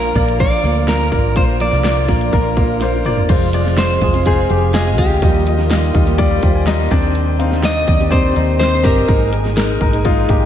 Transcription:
Already playing: A#1 A#2 D3 F3 A#3 D4 F4 A#4 D5 F5
0.14 A#1 F3 A#3 D4 F4 D5, kick, closed hi-hat
0.29 closed hi-hat
0.38 A#2 F3 A#3 D4 F4 A#4 D5, kick, closed hi-hat
0.63 D2 F3 A#3 D4 F4 D5, closed hi-hat
0.88 A#3 F4 A#4, snare, closed hi-hat
0.99 A#3 D4 F4
1.11 G#1 A#3 F4 D5, kick, closed hi-hat
1.35 A#1 A#2 F3 A#3 D4 F4 C5, kick, closed hi-hat
1.59 F3 A#3 D4 F4 A#4 D5, closed hi-hat
1.72 C2, snare
1.84 A#3 F4 D5, snare, closed hi-hat
1.96 closed hi-hat
2.08 A#1 F3 A#3 D4 F4 D5, kick, closed hi-hat
2.21 closed hi-hat
2.32 A#1 A#2 F3 A#3 D4 F4 A#4, kick, closed hi-hat
2.56 F3 A#3 D4 F4 F5, kick, closed hi-hat
2.81 A#3 F4 C5, snare, closed hi-hat
2.92 A#3 D4 F4
3.05 G1 A#3 F4 D5, mid tom, open hi-hat
3.17 floor tom
3.28 F1 C3 F3 G#3 C4 F4 C5, kick, closed hi-hat, crash
3.53 G#3 F4 D5, closed hi-hat
3.65 F2 C3 F3 G#3 C4 F4, snare
3.77 G#3 F4 C5, snare, closed hi-hat
4.01 F1 G#3 F4 G#4, kick, closed hi-hat
4.13 F2 C3 F3 G#3 C4 F4, closed hi-hat
4.26 G#3 F4 G#4 C5, kick, closed hi-hat
4.49 F1 F3 G#3 C4 F4 G4, closed hi-hat
4.74 G#3 F4 G#4 D#5, snare, closed hi-hat
4.85 F3 G#3 C4 F4
4.98 D2 G#3 F4 G4 G#4, kick, closed hi-hat
5.21 D#2 D#3 F3 G3 A#3 D#4 F4 G4 D#5, kick, closed hi-hat
5.47 G3 F4 D#5, closed hi-hat
5.57 D#3 F3 A#3 D#4 G4, snare
5.70 G3 F4 D#5, snare, closed hi-hat
5.94 D#2 G3 F4 D#5 F5, kick, closed hi-hat
6.06 D#3 F3 A#3 D#4 G4, closed hi-hat
6.18 G3 F4 D5 G5, kick, closed hi-hat
6.42 D#2 F3 G3 A#3 D#4 F4 G4 C5, kick, closed hi-hat
6.55 G#5
6.67 G3 F4 D#5 A#5, snare, closed hi-hat
6.78 A#3 D#4 G4
6.91 D#2 C3 D#3 C4 D4 G4 D5, kick, closed hi-hat
7.15 closed hi-hat
7.39 C4 D#4 F5, closed hi-hat
7.51 D#3 C4 D4 G4, snare
7.63 C4 D#4 D5 D#5, snare, closed hi-hat
7.88 D#2 C4 D#4 D5, kick, closed hi-hat
7.99 D#3 C4 D4 G4, closed hi-hat
8.10 C4 D#4 C5 D5, kick, closed hi-hat
8.35 D#2 D#3 C4 D4 D#4 G4 D#5, closed hi-hat
8.59 C4 D#4 C5, snare, closed hi-hat
8.71 C4 D4 G4
8.83 G1 C4 D#4 G4 A#4, kick, closed hi-hat
9.08 G#1 G#2 A#2 G#3 A#3 D#4 G#4 A#4, kick, closed hi-hat
9.32 G#3 D#4 A#4, closed hi-hat
9.44 G#3 A#3 D#4 G#4, snare
9.57 G#3 D#4 A#4, snare, closed hi-hat
9.69 closed hi-hat
9.81 G#1 G#3 D#4 A#4, kick, closed hi-hat
9.92 G#3 A#3 D#4 G#4, closed hi-hat
10.05 G#3 D#4 F4, kick, closed hi-hat
10.28 G#1 G#3 A#3 D#4 G4 G#4 A#5, kick, closed hi-hat
10.42 G5

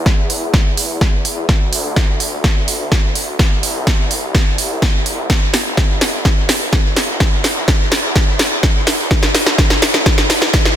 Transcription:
Already playing: E2
0.06 kick, snare
0.30 open hi-hat
0.54 kick, snare
0.77 open hi-hat
1.01 kick, snare
1.25 open hi-hat
1.49 D2, kick, snare
1.73 open hi-hat
1.96 kick, snare
2.20 open hi-hat
2.44 kick, snare
2.68 open hi-hat
2.92 kick, snare
3.15 open hi-hat
3.39 C2, kick, snare
3.63 open hi-hat
3.87 kick, snare
4.11 open hi-hat
4.35 kick, snare
4.58 open hi-hat
4.82 kick, snare
5.06 open hi-hat
5.30 G1, kick, snare
5.54 snare, open hi-hat
5.77 kick, snare
6.01 snare, open hi-hat
6.25 kick, snare
6.49 snare, open hi-hat
6.73 kick, snare
6.96 snare, open hi-hat
7.20 E2, kick, snare
7.44 snare, open hi-hat
7.68 kick, snare
7.92 snare, open hi-hat
8.16 kick, snare
8.39 snare, open hi-hat
8.63 kick, snare
8.87 snare, open hi-hat
9.11 D2, kick, snare
9.23 snare
9.35 snare, open hi-hat
9.46 snare
9.58 kick, snare
9.70 snare
9.82 snare, open hi-hat
9.94 snare
10.06 kick, snare
10.18 snare
10.30 snare, open hi-hat
10.42 snare
10.54 kick, snare
10.65 snare

